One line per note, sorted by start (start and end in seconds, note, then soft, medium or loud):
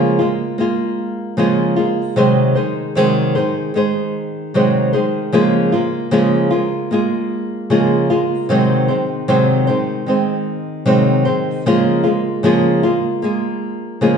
0.00 0.20 C#3 medium
0.00 0.20 F3 medium
0.00 0.20 G#3 medium
0.00 0.20 A#3 medium
0.00 0.18 F4 medium
0.00 0.19 G#4 medium
0.19 0.58 G#3 soft
0.19 0.57 A#3 soft
0.19 0.59 F4 medium
0.19 0.59 G#4 soft
0.58 1.38 G#3 medium
0.58 1.37 A#3 medium
0.58 1.38 F4 medium
0.58 1.38 G#4 medium
1.37 1.77 C#3 medium
1.37 1.78 F3 medium
1.37 1.77 G#3 medium
1.37 1.78 A#3 medium
1.37 1.75 F4 medium
1.37 1.77 G#4 medium
1.76 2.16 G#3 soft
1.76 2.17 A#3 soft
1.76 2.17 F4 medium
1.76 2.17 G#4 soft
2.16 2.56 C3 medium
2.16 2.57 D#3 medium
2.16 2.57 F#3 medium
2.16 2.56 G#3 medium
2.16 2.56 G#4 medium
2.16 2.54 C5 medium
2.55 2.95 D#3 soft
2.55 2.96 G#3 soft
2.55 2.96 G#4 soft
2.55 2.96 C5 medium
2.95 3.35 C3 medium
2.95 3.36 D#3 medium
2.95 3.36 F#3 medium
2.95 3.36 G#3 medium
2.95 3.35 G#4 medium
2.95 3.34 C5 medium
3.35 3.73 D#3 soft
3.35 3.74 G#3 medium
3.35 3.75 G#4 soft
3.35 3.75 C5 medium
3.74 4.54 D#3 medium
3.74 4.55 G#3 medium
3.74 4.56 G#4 medium
3.74 4.55 C5 medium
4.54 4.94 C3 medium
4.54 4.94 D#3 medium
4.54 4.94 F#3 medium
4.54 4.94 G#3 medium
4.54 4.93 G#4 medium
4.54 4.92 C5 medium
4.93 5.33 D#3 soft
4.93 5.33 G#3 soft
4.93 5.33 G#4 medium
4.93 5.33 C5 soft
5.32 5.73 C#3 medium
5.32 5.73 F3 medium
5.32 5.73 G#3 medium
5.32 5.73 A#3 medium
5.32 5.71 F4 medium
5.32 5.72 G#4 medium
5.72 6.11 G#3 medium
5.72 6.11 A#3 soft
5.72 6.12 F4 medium
5.72 6.12 G#4 soft
6.11 6.52 C#3 medium
6.11 6.52 F3 medium
6.11 6.52 G#3 medium
6.11 6.52 A#3 medium
6.11 6.49 F4 medium
6.11 6.51 G#4 medium
6.51 6.91 G#3 soft
6.51 6.90 A#3 soft
6.51 6.91 F4 medium
6.51 6.91 G#4 medium
6.91 7.70 G#3 medium
6.91 7.70 A#3 medium
6.91 7.71 F4 medium
6.91 7.71 G#4 medium
7.70 8.10 C#3 medium
7.70 8.10 F3 medium
7.70 8.10 G#3 medium
7.70 8.11 A#3 medium
7.70 8.09 F4 medium
7.70 8.10 G#4 medium
8.10 8.49 G#3 medium
8.10 8.50 A#3 soft
8.10 8.50 F4 medium
8.10 8.50 G#4 medium
8.49 8.89 C3 medium
8.49 8.89 D#3 medium
8.49 8.89 F#3 medium
8.49 8.89 G#3 medium
8.49 8.88 C4 medium
8.49 8.87 C5 medium
8.88 9.27 D#3 soft
8.88 9.28 G#3 soft
8.88 9.29 C4 medium
8.88 9.28 C5 medium
9.28 9.68 C3 medium
9.28 9.68 D#3 medium
9.28 9.68 F#3 medium
9.28 9.68 G#3 medium
9.28 9.67 C4 medium
9.28 9.66 C5 medium
9.67 10.05 D#3 soft
9.67 10.07 G#3 soft
9.67 10.07 C4 soft
9.67 10.07 C5 medium
10.06 10.85 D#3 medium
10.06 10.86 G#3 medium
10.06 10.86 C4 medium
10.06 10.86 C5 medium
10.85 11.26 C3 medium
10.85 11.26 D#3 medium
10.85 11.26 F#3 medium
10.85 11.26 G#3 medium
10.85 11.25 C4 medium
10.85 11.24 C5 medium
11.25 11.66 D#3 soft
11.25 11.66 G#3 soft
11.25 11.66 C4 soft
11.25 11.65 C5 medium
11.66 12.05 C#3 medium
11.66 12.05 F3 medium
11.66 12.05 G#3 medium
11.66 12.06 A#3 medium
11.66 12.02 F4 loud
11.66 12.03 G#4 medium
12.03 12.44 G#3 soft
12.03 12.43 A#3 soft
12.03 12.44 F4 medium
12.03 12.44 G#4 soft
12.43 12.83 C#3 medium
12.43 12.84 F3 medium
12.43 12.84 G#3 medium
12.43 12.84 A#3 medium
12.43 12.82 F4 medium
12.43 12.83 G#4 medium
12.83 13.22 G#3 soft
12.83 13.21 A#3 soft
12.83 13.23 F4 medium
12.83 13.23 G#4 soft
13.22 14.02 G#3 medium
13.22 14.01 A#3 medium
13.22 14.01 F4 medium
13.22 14.02 G#4 medium
14.01 14.18 C#3 medium
14.01 14.18 F3 medium
14.01 14.18 G#3 medium
14.01 14.18 A#3 medium
14.01 14.18 F4 medium
14.01 14.18 G#4 medium